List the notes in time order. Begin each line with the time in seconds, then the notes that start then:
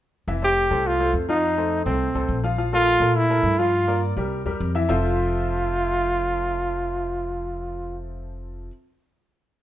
0.28 F1 E3 E4 E5
0.42 A3 G4 A4 C5
0.70 C2 A3 A4 C5
0.87 F4
1.00 A3 A4 C5
1.14 F2
1.28 F3 D#4 F4 F5
1.57 A3 A4 C5
1.86 C2 A3 C4 A4 C5
2.14 C2 A3 A4 C5
2.29 A#1
2.44 F3 F4 F5
2.58 F3 F4 F5
2.73 A3 F4 A4 A#4
3.00 A#2 A3 A4 A#4
3.17 E4
3.30 A3 A4 A#4
3.43 G2
3.59 F3 F4 F5
3.87 A#3 A#4 D5
4.17 C2 G3 G4 A#4
4.45 E2 G3 G4 A#4
4.60 F2
4.75 E3 E4 E5
4.89 F1 F3 C4 F4 A4 C5 E5